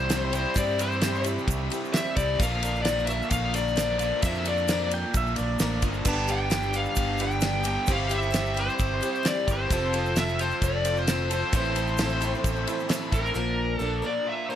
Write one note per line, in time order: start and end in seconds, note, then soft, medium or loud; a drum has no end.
0.00 0.45 C2 medium
0.00 0.32 C3 medium
0.00 0.32 E3 medium
0.00 0.33 G3 medium
0.00 0.32 C4 medium
0.00 0.11 E4 soft
0.00 0.31 E4 loud
0.00 0.10 G4 soft
0.00 0.32 C5 medium
0.09 0.54 G3 medium
0.09 0.54 C4 medium
0.09 0.56 E4 medium
0.09 0.55 G4 medium
0.09 snare loud
0.09 ride loud
0.09 shaker loud
0.32 0.55 C3 medium
0.32 0.56 E3 medium
0.32 0.56 G3 medium
0.32 0.55 C4 medium
0.32 0.55 E4 medium
0.32 0.58 C5 medium
0.32 ride medium
0.32 shaker medium
0.54 1.37 G2 loud
0.54 0.78 C3 medium
0.54 2.15 C3 loud
0.54 2.16 E3 loud
0.54 0.79 G3 medium
0.54 2.16 G3 loud
0.54 0.79 C4 medium
0.54 0.79 E4 medium
0.54 0.77 G4 medium
0.54 0.80 D5 medium
0.54 kick loud
0.54 ride medium
0.54 shaker loud
0.58 2.16 C4 loud
0.58 2.15 E4 loud
0.78 1.02 C4 soft
0.78 1.03 E4 soft
0.78 1.02 G4 medium
0.78 1.23 C5 medium
0.78 ride medium
0.78 shaker medium
0.92 shaker soft
1.01 1.26 G3 medium
1.01 1.25 C4 medium
1.01 1.24 E4 medium
1.01 1.23 G4 medium
1.01 snare loud
1.01 ride loud
1.01 shaker loud
1.15 shaker soft
1.24 1.72 C4 soft
1.24 1.71 E4 medium
1.24 1.69 G4 medium
1.24 ride medium
1.24 shaker medium
1.38 shaker soft
1.48 1.68 C2 loud
1.48 kick loud
1.48 ride loud
1.48 shaker loud
1.70 1.93 C4 soft
1.70 1.95 E4 soft
1.70 1.94 G4 medium
1.70 ride medium
1.70 shaker medium
1.85 shaker soft
1.93 2.40 G3 medium
1.93 2.40 C4 medium
1.93 2.41 E4 medium
1.93 2.42 G4 medium
1.93 2.15 E5 medium
1.93 snare loud
1.93 ride medium
1.93 shaker loud
2.16 2.37 C2 medium
2.16 2.39 C3 medium
2.16 2.40 E3 medium
2.16 2.39 G3 medium
2.16 2.39 C4 medium
2.16 2.38 E4 medium
2.16 2.38 D5 medium
2.16 kick medium
2.16 ride medium
2.16 shaker medium
2.40 3.20 A#1 loud
2.40 3.99 A#2 medium
2.40 2.63 A#2 medium
2.40 3.99 D3 medium
2.40 2.64 F3 medium
2.40 4.00 A#3 loud
2.40 2.64 A#3 medium
2.40 2.63 D4 medium
2.40 4.00 D4 loud
2.40 2.61 A#4 medium
2.40 2.82 F5 loud
2.40 kick loud
2.40 ride loud
2.40 shaker medium
2.44 3.98 F4 loud
2.63 2.85 A#3 soft
2.63 2.86 D4 medium
2.63 2.86 A#4 medium
2.63 ride medium
2.63 shaker medium
2.76 shaker soft
2.82 3.08 F3 medium
2.82 3.06 D5 medium
2.82 snare loud
2.82 ride loud
2.86 3.09 A#3 medium
2.86 3.09 D4 medium
2.86 3.07 A#4 medium
2.86 shaker medium
2.99 shaker soft
3.06 3.56 D4 medium
3.06 3.53 A#4 medium
3.06 3.30 E5 medium
3.06 ride medium
3.06 shaker medium
3.12 3.56 A#3 soft
3.22 shaker soft
3.30 4.11 A#1 medium
3.30 3.52 F5 loud
3.30 kick loud
3.30 ride loud
3.30 shaker loud
3.54 3.77 D4 soft
3.54 3.77 A#4 medium
3.54 3.98 D5 medium
3.54 ride medium
3.54 shaker medium
3.58 3.76 A#3 soft
3.68 shaker soft
3.76 4.22 F3 medium
3.76 4.23 A#3 medium
3.76 4.25 D4 medium
3.76 4.24 A#4 medium
3.76 snare loud
3.76 ride loud
3.76 shaker loud
3.99 4.23 D3 medium
3.99 4.22 A#3 medium
3.99 4.25 D4 medium
3.99 4.21 F4 medium
3.99 4.22 D5 medium
3.99 ride medium
3.99 shaker medium
4.03 4.22 A#2 medium
4.22 5.03 F2 loud
4.22 5.82 A#2 medium
4.22 4.46 A#2 medium
4.22 5.82 D3 medium
4.22 4.47 F3 medium
4.22 4.47 A#3 medium
4.22 5.83 A#3 medium
4.22 4.46 D4 medium
4.22 5.82 D4 medium
4.22 4.44 A#4 medium
4.22 4.46 E5 loud
4.22 kick loud
4.22 ride loud
4.22 shaker medium
4.27 5.81 F4 loud
4.35 shaker soft
4.45 4.69 D4 medium
4.45 4.69 A#4 medium
4.45 4.90 D5 medium
4.45 ride medium
4.45 shaker medium
4.50 4.69 A#3 soft
4.57 shaker soft
4.68 4.92 F3 medium
4.68 4.92 A#3 medium
4.68 4.92 D4 medium
4.68 4.91 A#4 medium
4.68 snare loud
4.68 ride loud
4.68 shaker medium
4.91 5.38 A#3 soft
4.91 5.36 D4 medium
4.91 5.35 A#4 medium
4.91 5.15 G5 medium
4.91 ride medium
5.14 5.35 A#1 loud
5.14 5.38 E5 medium
5.14 kick loud
5.14 ride loud
5.14 shaker loud
5.27 shaker soft
5.36 5.59 A#1 medium
5.36 5.59 A#3 soft
5.36 5.60 D4 medium
5.36 5.60 A#4 medium
5.36 5.60 D5 medium
5.36 ride medium
5.36 shaker medium
5.59 5.81 A1 medium
5.59 6.05 F3 medium
5.59 6.06 A#3 medium
5.59 6.06 D4 medium
5.59 6.07 A#4 medium
5.59 5.83 D5 medium
5.59 snare loud
5.59 ride loud
5.59 shaker loud
5.82 6.04 G1 medium
5.82 6.05 D3 medium
5.82 6.05 A#3 medium
5.82 6.05 D4 medium
5.82 6.04 F4 medium
5.82 kick medium
5.82 ride medium
5.82 shaker medium
5.86 6.06 A#2 medium
5.94 shaker soft
6.05 6.86 G1 loud
6.05 6.28 G2 medium
6.05 7.64 G2 medium
6.05 6.28 D3 medium
6.05 7.65 D3 medium
6.05 6.29 G3 medium
6.05 7.65 G3 medium
6.05 6.29 B3 medium
6.05 7.65 B3 medium
6.05 6.68 D4 medium
6.05 6.27 D4 medium
6.05 7.64 D4 loud
6.05 6.26 G4 medium
6.05 6.68 G4 medium
6.05 6.68 B4 medium
6.05 6.31 A5 loud
6.05 kick loud
6.05 crash loud
6.05 shaker loud
6.09 7.63 G4 loud
6.27 6.49 G3 soft
6.27 6.50 B3 soft
6.27 6.51 D4 medium
6.27 6.51 G4 medium
6.27 6.77 G5 loud
6.27 ride medium
6.27 shaker medium
6.50 6.74 G3 medium
6.50 6.74 B3 medium
6.50 6.74 D4 medium
6.50 6.72 G4 medium
6.50 snare loud
6.50 ride loud
6.50 shaker medium
6.63 shaker soft
6.73 7.21 G3 medium
6.73 7.20 B3 soft
6.73 7.19 D4 medium
6.73 7.18 G4 medium
6.73 7.22 F5 medium
6.73 ride medium
6.73 shaker medium
6.85 shaker soft
6.96 7.77 G1 medium
6.96 kick medium
6.96 ride loud
6.96 shaker medium
7.18 7.42 B3 soft
7.18 7.43 D4 soft
7.18 7.66 D4 medium
7.18 7.43 G4 soft
7.18 7.67 G4 medium
7.18 7.67 B4 medium
7.18 7.67 G5 loud
7.18 ride medium
7.18 shaker medium
7.23 7.41 G3 soft
7.31 shaker soft
7.41 7.87 G3 medium
7.41 7.89 B3 medium
7.41 7.89 D4 medium
7.41 snare loud
7.41 ride loud
7.41 shaker loud
7.45 7.89 G4 medium
7.64 7.88 D3 medium
7.64 7.86 G3 medium
7.64 7.87 B3 medium
7.64 7.87 D4 medium
7.64 7.86 G4 medium
7.64 ride medium
7.64 shaker medium
7.68 7.88 G2 medium
7.68 7.90 G5 medium
7.86 8.68 G1 loud
7.86 9.47 G3 medium
7.86 8.11 G3 medium
7.86 9.49 C4 loud
7.86 8.11 C4 medium
7.86 8.49 E4 medium
7.86 8.10 E4 medium
7.86 9.47 E4 loud
7.86 8.50 G4 medium
7.86 8.50 C5 medium
7.86 kick loud
7.86 ride loud
7.86 shaker medium
7.91 8.08 G4 medium
7.91 9.45 G4 loud
7.91 8.14 F5 loud
8.09 8.31 C4 medium
8.09 8.32 E4 soft
8.09 8.33 G4 medium
8.09 ride medium
8.09 shaker medium
8.14 8.60 E5 medium
8.22 shaker soft
8.31 8.55 G3 medium
8.31 8.56 C4 medium
8.31 8.55 E4 medium
8.31 8.53 G4 medium
8.31 snare loud
8.31 ride loud
8.31 shaker medium
8.46 shaker soft
8.54 9.03 C4 soft
8.54 9.01 E4 medium
8.54 8.99 G4 medium
8.54 ride medium
8.59 9.29 C5 loud
8.69 shaker soft
8.79 9.00 G1 medium
8.79 kick loud
8.79 ride loud
8.79 shaker medium
9.01 9.24 C4 soft
9.01 9.49 E4 medium
9.01 9.24 E4 soft
9.01 9.25 G4 soft
9.01 9.49 G4 medium
9.01 9.49 C5 medium
9.01 ride medium
9.01 shaker medium
9.15 shaker soft
9.23 9.70 G3 medium
9.23 9.72 C4 medium
9.23 9.71 E4 medium
9.23 9.72 G4 medium
9.23 snare loud
9.23 ride medium
9.23 shaker medium
9.27 9.48 D5 medium
9.47 9.68 G1 medium
9.47 9.70 G3 medium
9.47 9.71 C4 medium
9.47 9.70 E4 medium
9.47 9.69 G4 medium
9.47 kick medium
9.47 ride medium
9.47 shaker medium
9.52 10.21 C5 medium
9.70 10.51 F1 medium
9.70 9.94 F2 medium
9.70 9.94 C3 medium
9.70 11.29 F3 medium
9.70 9.95 F3 medium
9.70 11.30 C4 medium
9.70 9.95 C4 medium
9.70 10.33 F4 medium
9.70 9.93 F4 medium
9.70 11.30 F4 loud
9.70 10.33 A4 medium
9.70 9.92 A4 medium
9.70 11.29 A4 loud
9.70 10.33 C5 medium
9.70 kick loud
9.70 ride loud
9.70 shaker medium
9.93 10.15 F3 soft
9.93 10.16 C4 medium
9.93 10.17 F4 medium
9.93 10.16 A4 medium
9.93 ride medium
10.06 shaker soft
10.16 10.39 F3 medium
10.16 10.40 C4 medium
10.16 10.40 F4 medium
10.16 10.39 A4 medium
10.16 10.41 E5 medium
10.16 snare loud
10.16 ride loud
10.16 shaker medium
10.29 shaker soft
10.39 10.87 F3 soft
10.39 10.86 C4 medium
10.39 10.85 F4 medium
10.39 10.84 A4 medium
10.39 10.61 C5 medium
10.39 ride medium
10.39 shaker medium
10.51 shaker soft
10.62 11.42 F1 loud
10.62 10.95 D5 medium
10.62 kick medium
10.62 ride loud
10.62 shaker medium
10.85 11.06 F3 soft
10.85 11.08 C4 soft
10.85 11.31 F4 medium
10.85 11.09 F4 medium
10.85 11.08 A4 soft
10.85 11.32 A4 medium
10.85 11.31 C5 medium
10.85 ride medium
10.85 shaker medium
10.97 11.30 C5 medium
10.97 shaker soft
11.07 11.53 F3 medium
11.07 11.54 C4 medium
11.07 11.54 F4 medium
11.07 11.55 A4 medium
11.07 snare loud
11.07 ride loud
11.07 shaker medium
11.30 11.53 F3 medium
11.30 11.53 C4 medium
11.30 11.53 F4 medium
11.30 11.52 A4 medium
11.30 11.55 C5 medium
11.30 ride medium
11.30 shaker medium
11.52 12.33 A1 loud
11.52 13.12 A2 medium
11.52 11.76 A2 medium
11.52 13.12 E3 medium
11.52 11.77 E3 medium
11.52 11.77 A3 medium
11.52 13.12 C4 medium
11.52 11.76 C4 medium
11.52 12.15 E4 medium
11.52 11.75 E4 medium
11.52 13.11 E4 loud
11.52 12.16 A4 medium
11.52 11.74 A4 medium
11.52 12.16 C5 medium
11.52 kick loud
11.52 ride loud
11.52 shaker medium
11.56 13.10 A4 loud
11.56 12.88 C5 medium
11.65 shaker soft
11.75 11.97 A3 medium
11.75 11.98 C4 medium
11.75 11.99 E4 medium
11.75 11.99 A4 medium
11.75 ride medium
11.75 shaker medium
11.87 shaker soft
11.98 12.22 A3 medium
11.98 12.22 C4 medium
11.98 12.21 E4 medium
11.98 snare loud
11.98 ride loud
11.98 shaker medium
12.02 12.19 A4 medium
12.09 shaker soft
12.21 12.69 A3 medium
12.21 12.68 C4 medium
12.21 12.67 E4 medium
12.21 12.66 A4 medium
12.21 ride medium
12.21 shaker medium
12.35 shaker soft
12.44 12.65 A1 loud
12.44 kick medium
12.44 ride loud
12.44 shaker medium
12.56 shaker soft
12.67 12.88 A3 soft
12.67 12.89 C4 medium
12.67 12.90 E4 medium
12.67 13.14 E4 medium
12.67 12.90 A4 medium
12.67 13.14 A4 medium
12.67 13.15 C5 medium
12.67 ride medium
12.67 shaker medium
12.80 shaker soft
12.89 13.35 A3 medium
12.89 13.35 C4 medium
12.89 13.35 E4 medium
12.89 13.36 A4 medium
12.89 snare loud
12.89 ride medium
12.89 shaker medium
13.11 13.33 A1 medium
13.11 13.36 E3 medium
13.11 13.35 C4 medium
13.11 13.35 E4 medium
13.11 13.34 A4 medium
13.11 13.78 A#4 medium
13.11 kick medium
13.11 ride medium
13.11 shaker medium
13.16 13.35 A2 medium
13.26 shaker soft
13.34 13.76 A#1 medium
13.34 13.81 A#2 medium
13.34 14.50 A#2 medium
13.34 13.82 D3 medium
13.34 13.78 F3 medium
13.34 13.79 A#3 medium
13.34 13.80 D4 medium
13.34 13.81 A#4 medium
13.78 14.01 A#1 medium
13.78 14.04 F3 medium
13.78 14.03 A#3 medium
13.78 14.02 D4 medium
13.78 14.08 A4 medium
13.82 14.55 D4 medium
13.82 14.01 A#4 medium
14.02 14.51 F3 soft
14.02 14.50 A#3 soft
14.02 14.49 A#3 medium
14.02 14.49 D4 soft
14.02 14.49 A#4 medium
14.06 14.29 D5 medium
14.27 14.55 F4 medium
14.27 14.50 E5 medium
14.50 14.55 A#3 medium
14.50 14.55 A#3 soft
14.50 14.55 D4 soft
14.50 14.55 A#4 soft
14.50 14.55 D5 medium